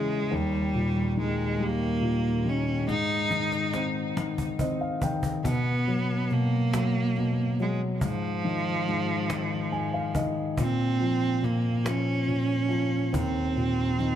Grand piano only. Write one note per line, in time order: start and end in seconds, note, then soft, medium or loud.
0.00 0.28 E2 soft
0.00 0.34 C#3 soft
0.00 0.34 E3 soft
0.31 2.84 D#2 medium
0.74 2.00 A#2 soft
1.17 2.44 D#3 soft
1.60 2.84 G3 soft
2.01 2.85 A#2 soft
2.45 2.87 D#3 soft
2.88 5.41 G#2 medium
3.30 4.15 D#3 soft
3.73 4.58 C4 soft
4.17 5.02 D#3 soft
4.60 5.43 C4 soft
4.60 4.80 D#5 soft
4.81 5.01 F5 soft
5.03 5.44 D#3 soft
5.03 5.42 G5 medium
5.44 6.29 B2 medium
5.87 6.73 F#3 soft
6.31 7.16 B2 soft
6.74 7.58 F#3 soft
7.18 8.00 B2 soft
7.60 8.01 F#3 soft
8.02 8.87 G#2 soft
8.45 9.28 D#3 soft
8.88 9.70 G#2 soft
9.30 10.14 D#3 soft
9.72 10.55 G#2 soft
9.72 9.92 G#5 medium
9.94 10.14 F5 soft
10.15 10.56 D#3 soft
10.15 10.55 D#5 medium
10.59 11.41 A#2 medium
11.00 11.83 F3 soft
11.43 12.26 A#2 soft
11.85 12.67 F3 soft
12.27 13.11 A#2 soft
12.69 13.11 F3 soft
13.13 14.15 D#2 soft
13.56 14.15 A#2 soft
13.99 14.15 D#3 soft